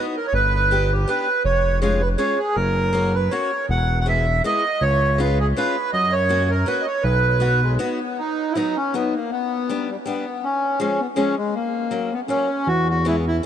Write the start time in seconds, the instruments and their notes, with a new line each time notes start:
Already playing: steel-string acoustic guitar B3 D#4 F#4
0.17 accordion A#4
0.27 accordion C#5
0.33 analog synth bass G1, accordion B4
0.71 steel-string acoustic guitar B3 D4 G4
0.92 accordion G4
1.07 steel-string acoustic guitar B3 D4 G4, accordion B4
1.45 analog synth bass F1, accordion C#5
1.81 steel-string acoustic guitar G#3 C#4 F4, accordion C#5
2.01 accordion B4
2.18 steel-string acoustic guitar G#3 C#4 F4, accordion C#5
2.38 accordion G#4
2.55 analog synth bass F#1, accordion A#4
2.93 steel-string acoustic guitar A#3 C#4 F#4
3.15 accordion B4
3.31 steel-string acoustic guitar A#3 C#4 F#4, accordion C#5
3.69 analog synth bass E1, accordion F#5
4.01 accordion F#5
4.06 steel-string acoustic guitar G#3 B3 E4, accordion E5
4.44 steel-string acoustic guitar G#3 B3 E4, accordion D#5
4.81 analog synth bass C#2, accordion C#5
5.18 steel-string acoustic guitar G#3 C#4 F4, accordion B4
5.40 accordion G#4
5.57 steel-string acoustic guitar G#3 C#4 F4, accordion B4
5.93 analog synth bass F#2, accordion D#5
6.12 accordion C#5
6.29 steel-string acoustic guitar A#3 C#4 F#4
6.50 accordion A#4
6.66 steel-string acoustic guitar A#3 C#4 F#4, accordion B4
6.81 accordion D#5
6.86 accordion C#5
7.03 analog synth bass B1, accordion B4
7.40 steel-string acoustic guitar B3 D#4 F#4
7.62 accordion G#3
7.79 steel-string acoustic guitar B3 D#4 F#4, accordion B3
8.19 accordion D#4
8.52 steel-string acoustic guitar F#3, accordion D#4 E4
8.56 steel-string acoustic guitar B3 D#4
8.77 accordion C#4
8.94 steel-string acoustic guitar F#3 B3 D#4, accordion B3
9.15 accordion A#3
9.31 accordion B3
9.69 steel-string acoustic guitar G3 B3 D4
9.89 accordion G3
10.06 steel-string acoustic guitar G3 B3 D4, accordion B3
10.44 accordion C#4
10.80 steel-string acoustic guitar F3 G#3 C#4, accordion C#4
10.99 accordion B3
11.16 steel-string acoustic guitar F3 G#3 C#4, accordion C#4
11.38 accordion G#3
11.54 accordion A#3
11.91 steel-string acoustic guitar F#3 A#3 C#4
12.13 accordion B3
12.28 steel-string acoustic guitar F#3 A#3 C#4, accordion C#4
12.67 analog synth bass E2, accordion F#4
12.89 accordion F#4
13.05 steel-string acoustic guitar E3 G#3 B3, accordion E4
13.28 accordion E4